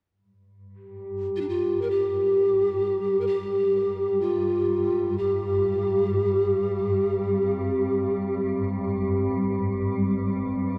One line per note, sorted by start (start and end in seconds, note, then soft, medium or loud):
0.09 10.78 G2 medium
0.09 10.78 G3 medium
0.74 9.27 G4 soft
1.36 1.43 F4 medium
1.41 1.50 D4 soft
1.49 1.83 F4 medium
1.82 1.92 A#4 medium
1.91 3.20 G4 medium
3.21 3.28 A#4 soft
3.27 4.22 G4 medium
4.21 5.19 F4 medium
5.18 8.47 G4 medium
7.15 10.78 C4 soft